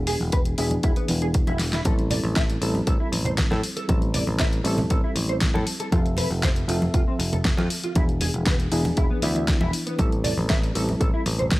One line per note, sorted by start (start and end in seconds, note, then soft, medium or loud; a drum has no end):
0.00 0.15 E1 medium
0.00 0.55 E3 medium
0.00 0.55 B3 medium
0.00 0.56 D4 medium
0.00 0.56 G#4 medium
0.07 0.14 G#4 medium
0.07 open hi-hat loud
0.20 0.53 E1 medium
0.20 high conga medium
0.32 0.37 B4 medium
0.32 kick loud
0.32 closed hi-hat medium
0.45 closed hi-hat medium
0.58 0.78 E1 medium
0.58 1.06 E3 medium
0.58 1.07 B3 medium
0.58 1.07 D4 medium
0.58 0.65 E4 medium
0.58 1.07 G#4 loud
0.58 open hi-hat medium
0.71 closed hi-hat soft
0.71 high conga medium
0.83 0.94 E1 medium
0.83 0.90 E4 medium
0.83 kick loud
0.83 closed hi-hat medium
0.96 1.03 B3 medium
0.96 closed hi-hat soft
1.08 1.42 E1 medium
1.08 1.82 E3 medium
1.08 1.82 B3 medium
1.08 1.83 D4 medium
1.08 1.83 E4 medium
1.08 open hi-hat medium
1.08 high conga medium
1.22 1.26 G#4 medium
1.22 closed hi-hat soft
1.34 kick loud
1.34 closed hi-hat medium
1.47 1.80 E1 medium
1.47 1.57 E4 medium
1.47 closed hi-hat soft
1.47 high conga medium
1.59 snare medium
1.59 open hi-hat medium
1.73 1.79 E4 medium
1.73 snare medium
1.73 closed hi-hat medium
1.85 2.19 A1 medium
1.85 2.58 G3 medium
1.85 2.59 C4 medium
1.85 2.59 E4 medium
1.85 1.92 A4 medium
1.85 2.59 A4 medium
1.85 kick loud
1.85 closed hi-hat medium
1.85 high conga medium
1.99 closed hi-hat soft
2.11 2.17 D5 medium
2.11 open hi-hat loud
2.11 low conga medium
2.23 2.56 A1 medium
2.23 high conga medium
2.36 2.40 E5 medium
2.36 kick loud
2.36 snare loud
2.36 closed hi-hat medium
2.50 closed hi-hat medium
2.61 2.81 A1 medium
2.61 3.86 G3 medium
2.61 3.86 C4 medium
2.61 3.86 E4 medium
2.61 2.68 A4 medium
2.61 3.87 A4 medium
2.61 open hi-hat loud
2.75 high conga medium
2.87 2.97 A1 medium
2.87 2.94 A4 medium
2.87 kick loud
2.87 closed hi-hat medium
3.00 3.06 E4 medium
3.12 3.46 A1 medium
3.12 open hi-hat loud
3.12 high conga medium
3.25 3.29 C5 medium
3.25 closed hi-hat soft
3.25 low conga medium
3.38 kick loud
3.38 snare loud
3.38 closed hi-hat medium
3.51 3.60 A2 medium
3.51 3.60 A4 medium
3.51 snare soft
3.51 high conga medium
3.63 open hi-hat loud
3.77 3.83 A4 medium
3.77 closed hi-hat medium
3.88 4.22 A1 medium
3.88 4.62 G3 medium
3.88 4.62 C4 medium
3.88 4.62 E4 medium
3.88 3.95 A4 medium
3.88 4.63 A4 medium
3.88 kick loud
3.88 closed hi-hat medium
3.88 high conga medium
4.02 closed hi-hat soft
4.14 4.21 D5 medium
4.14 open hi-hat loud
4.14 low conga medium
4.27 4.60 A1 medium
4.27 high conga medium
4.39 4.44 E5 medium
4.39 kick loud
4.39 snare loud
4.39 closed hi-hat medium
4.53 closed hi-hat soft
4.64 4.84 A1 loud
4.64 5.89 G3 medium
4.64 5.89 C4 medium
4.64 5.89 E4 medium
4.64 4.72 A4 medium
4.64 5.90 A4 loud
4.64 open hi-hat loud
4.78 high conga medium
4.78 low conga medium
4.90 5.00 A1 medium
4.90 4.97 A4 medium
4.90 kick loud
4.90 closed hi-hat medium
5.04 5.10 E4 medium
5.15 5.49 A1 medium
5.15 open hi-hat loud
5.15 high conga medium
5.29 5.33 C5 medium
5.29 closed hi-hat soft
5.41 kick loud
5.41 snare loud
5.41 closed hi-hat medium
5.54 5.64 A2 medium
5.54 5.64 A4 loud
5.54 high conga medium
5.67 open hi-hat loud
5.80 5.86 A4 loud
5.80 closed hi-hat medium
5.91 6.26 F1 medium
5.91 6.65 F3 medium
5.91 6.65 C4 medium
5.91 5.99 F4 medium
5.91 6.66 A4 medium
5.91 6.66 E5 medium
5.91 kick loud
5.91 closed hi-hat medium
5.91 high conga loud
6.06 closed hi-hat soft
6.17 6.24 B4 medium
6.17 open hi-hat loud
6.17 low conga medium
6.30 6.63 F1 medium
6.30 high conga medium
6.43 6.47 C5 medium
6.43 kick loud
6.43 snare loud
6.43 closed hi-hat medium
6.56 closed hi-hat soft
6.68 6.88 F1 medium
6.68 7.92 F3 medium
6.68 7.93 C4 medium
6.68 6.75 F4 medium
6.68 7.93 A4 medium
6.68 7.93 E5 medium
6.68 open hi-hat loud
6.82 high conga medium
6.94 7.04 F1 medium
6.94 7.01 F4 medium
6.94 kick loud
6.94 closed hi-hat medium
7.08 7.14 C4 medium
7.19 7.52 F1 medium
7.19 open hi-hat loud
7.19 high conga medium
7.33 7.36 A4 medium
7.33 closed hi-hat soft
7.33 low conga medium
7.45 kick loud
7.45 snare loud
7.45 closed hi-hat medium
7.58 7.67 F2 medium
7.58 7.67 F4 medium
7.58 snare soft
7.58 high conga medium
7.70 open hi-hat loud
7.83 7.90 F4 medium
7.83 closed hi-hat soft
7.95 8.29 E1 medium
7.95 8.69 E3 medium
7.95 8.69 B3 medium
7.95 8.69 D4 medium
7.95 8.02 E4 medium
7.95 8.70 G#4 medium
7.95 kick loud
7.95 closed hi-hat medium
7.95 high conga loud
8.09 closed hi-hat soft
8.21 8.28 G#4 medium
8.21 open hi-hat loud
8.21 low conga medium
8.34 8.67 E1 medium
8.34 closed hi-hat soft
8.34 high conga medium
8.46 8.51 B4 medium
8.46 kick loud
8.46 snare loud
8.46 closed hi-hat medium
8.60 closed hi-hat soft
8.71 8.91 E1 medium
8.71 9.20 E3 medium
8.71 9.20 B3 medium
8.71 9.20 D4 medium
8.71 8.78 E4 medium
8.71 9.21 G#4 loud
8.71 open hi-hat loud
8.85 high conga medium
8.85 low conga medium
8.97 9.07 E1 medium
8.97 9.04 E4 medium
8.97 kick loud
8.97 closed hi-hat medium
9.11 9.17 B3 medium
9.22 9.56 D2 medium
9.22 9.96 E3 medium
9.22 9.96 B3 medium
9.22 9.96 D4 medium
9.22 9.27 E4 medium
9.22 9.97 E4 medium
9.22 open hi-hat loud
9.22 high conga medium
9.36 9.42 E5 medium
9.36 closed hi-hat soft
9.48 kick loud
9.48 snare loud
9.48 closed hi-hat medium
9.61 9.71 E1 medium
9.61 9.70 E4 loud
9.61 high conga medium
9.73 open hi-hat loud
9.87 9.96 B3 medium
9.87 closed hi-hat soft
9.98 10.32 A1 medium
9.98 10.72 G3 medium
9.98 10.72 C4 medium
9.98 10.73 E4 medium
9.98 10.05 A4 medium
9.98 10.73 A4 medium
9.98 kick loud
9.98 closed hi-hat medium
9.98 high conga loud
10.12 closed hi-hat soft
10.24 10.31 D5 medium
10.24 open hi-hat loud
10.24 low conga medium
10.37 10.70 A1 medium
10.37 high conga medium
10.50 10.54 E5 medium
10.50 kick loud
10.50 snare loud
10.50 closed hi-hat medium
10.63 closed hi-hat soft
10.74 10.95 A1 loud
10.74 11.60 G3 medium
10.74 11.60 C4 medium
10.74 11.60 E4 medium
10.74 10.82 A4 medium
10.74 11.60 A4 medium
10.74 open hi-hat medium
10.89 high conga medium
11.00 11.11 A1 medium
11.00 11.07 A4 medium
11.00 kick loud
11.00 closed hi-hat medium
11.14 11.20 E4 medium
11.26 11.59 A1 medium
11.26 open hi-hat medium
11.26 high conga medium
11.39 11.43 C5 medium
11.39 closed hi-hat soft
11.39 low conga medium
11.51 kick loud
11.51 snare loud
11.51 closed hi-hat medium